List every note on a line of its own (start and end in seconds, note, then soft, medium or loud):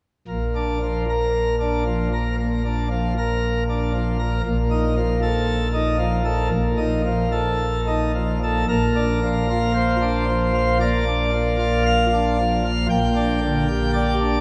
0.28 4.41 A#1 medium
0.28 4.41 A#2 medium
0.55 0.78 D4 medium
0.82 1.05 F3 soft
1.10 1.55 A#4 medium
1.60 1.83 D4 medium
1.87 2.09 F3 medium
2.13 2.36 A#4 medium
2.40 2.62 A#3 medium
2.65 2.88 D4 medium
2.91 3.14 F3 medium
3.18 3.63 A#4 medium
3.69 3.92 D4 medium
3.94 4.17 F3 medium
4.20 4.41 A#4 medium
4.46 6.50 A#1 medium
4.46 6.49 A#2 medium
4.71 4.94 D#4 medium
4.97 5.20 F3 medium
5.22 5.68 A4 medium
5.74 5.97 D#4 medium
5.99 6.22 F3 medium
6.25 6.48 A4 medium
6.51 8.64 A#1 medium
6.51 8.64 A#2 medium
6.78 7.01 D#4 medium
7.06 7.29 F3 medium
7.32 7.80 A4 medium
7.87 8.11 D#4 medium
8.15 8.39 F3 medium
8.43 8.65 A4 medium
8.69 12.87 A#1 medium
8.69 12.87 A#2 medium
8.69 9.72 A#4 medium
8.96 9.19 D4 medium
9.23 9.46 F3 soft
9.50 9.96 F4 medium
9.75 10.77 C5 medium
10.02 10.25 D4 soft
10.28 10.52 F3 soft
10.54 10.78 F4 soft
10.80 11.04 A#3 medium
10.80 11.83 D5 medium
11.07 11.31 D4 soft
11.34 11.57 F3 soft
11.59 12.06 F4 medium
11.86 12.87 F5 medium
12.14 12.36 D4 soft
12.39 12.62 F3 soft
12.64 12.86 F4 soft
12.90 14.41 A#1 medium
12.90 14.41 A#2 medium
12.90 13.90 G5 medium
13.16 13.39 D4 medium
13.41 13.65 D3 soft
13.68 14.14 G4 medium
13.94 14.41 D5 medium
14.20 14.41 D4 medium